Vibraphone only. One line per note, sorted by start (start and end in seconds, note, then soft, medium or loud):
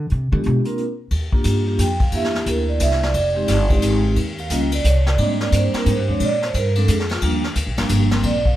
0.32 0.63 G#3 medium
0.32 0.64 B3 medium
0.32 0.64 D4 medium
0.32 0.64 F4 medium
0.32 0.64 G4 medium
0.65 0.76 A#3 medium
0.65 0.77 C4 medium
0.65 0.77 D4 medium
0.65 0.77 F4 medium
0.65 0.77 A#4 medium
1.33 1.65 A#3 medium
1.33 1.65 D4 medium
1.33 1.65 F4 medium
1.33 1.65 G4 medium
1.67 1.78 A#3 medium
1.67 1.78 D4 medium
1.67 1.78 F4 medium
1.67 1.78 G4 medium
1.81 2.01 G5 medium
2.03 2.14 F5 medium
2.13 3.08 A#3 medium
2.13 3.08 D4 medium
2.13 3.08 E4 medium
2.13 2.34 G4 medium
2.13 2.35 E5 medium
2.48 2.69 A#4 medium
2.69 2.81 D5 medium
2.82 3.03 E5 loud
3.03 3.79 D5 loud
3.36 3.47 G#3 medium
3.36 3.47 C4 medium
3.36 3.48 D#4 medium
3.36 3.48 G4 medium
3.71 4.14 G#3 medium
3.71 4.15 C4 medium
3.71 4.15 D#4 medium
3.71 4.15 G4 medium
4.40 4.51 F5 medium
4.51 4.70 G3 medium
4.51 4.70 A#3 medium
4.51 4.70 C#4 medium
4.51 4.71 F4 medium
4.51 4.73 D#5 medium
4.74 4.85 D5 medium
4.87 5.07 C#5 medium
5.08 5.19 D5 medium
5.18 5.70 G3 medium
5.18 5.70 A#3 medium
5.18 5.70 C4 medium
5.18 5.70 D4 medium
5.18 5.41 D#5 medium
5.42 5.53 D5 medium
5.55 5.75 C5 medium
5.73 5.85 G3 medium
5.73 5.85 A#3 medium
5.73 5.85 C4 medium
5.73 5.85 D4 medium
5.73 5.87 A#4 medium
5.90 6.09 C5 medium
6.08 6.19 F3 medium
6.08 6.19 G#3 medium
6.08 6.19 C4 medium
6.08 6.19 D4 medium
6.08 6.22 C#5 loud
6.24 6.43 D5 medium
6.44 6.55 C5 medium
6.58 6.77 A#4 medium
6.76 6.87 F3 medium
6.76 6.87 G#3 medium
6.76 6.87 C4 medium
6.76 6.87 D4 medium
6.76 6.89 A4 medium
6.91 7.10 G#4 medium
7.11 7.18 F4 loud
7.23 7.42 F3 medium
7.23 7.42 G3 medium
7.23 7.42 A#3 medium
7.23 7.42 D4 medium
7.78 8.10 F3 medium
7.78 8.10 G3 medium
7.78 8.10 A#3 medium
7.78 8.10 D4 medium
8.11 8.22 F3 medium
8.11 8.22 G3 medium
8.11 8.23 A#3 medium
8.11 8.23 C4 loud
8.26 8.46 D5 medium
8.47 8.56 F5 loud